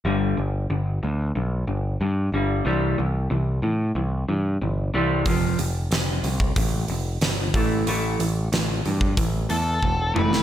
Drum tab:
HH |----------------|----------------|o-o-o-o-o-o-o-o-|o-o-o-o-o-o-----|
SD |----------------|----------------|----o-------o---|----o----------o|
T2 |----------------|----------------|----------------|--------------o-|
BD |----------------|----------------|o------oo-----o-|-------oo---o---|